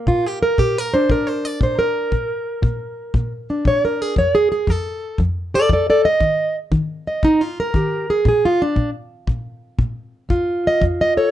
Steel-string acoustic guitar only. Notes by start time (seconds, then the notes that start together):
Already playing: A#3
0.07 A#2 F4
0.26 G4
0.42 A#4
0.58 A#2 G4
0.78 A#4
0.94 D4 C5
1.09 A#2 A#4
1.27 C5
1.45 D5
1.61 A#2 C5
1.79 A#4
2.12 A#2
2.62 A#2
3.15 A#2
3.50 D4
3.66 A#2 C#5
3.85 A#4
4.02 G#4
4.18 F2 C#5
4.35 G#4
4.52 G#4
4.68 F2 A4
5.20 F2
5.54 A4 D5
5.70 F2 A4 D5
5.90 A4 D5
6.05 D#5
6.20 D#3
6.72 D#3
7.07 D#5
7.24 D#4
7.41 F4
7.60 A#4
7.75 D#3 G4
8.10 G#4
8.26 A#2 G#4
8.45 F4
8.62 D4
8.76 A#2
9.27 A#2
9.79 A#2
10.29 F2 F4
10.67 D#5
10.81 F2
11.01 D#5
11.17 A4 C#5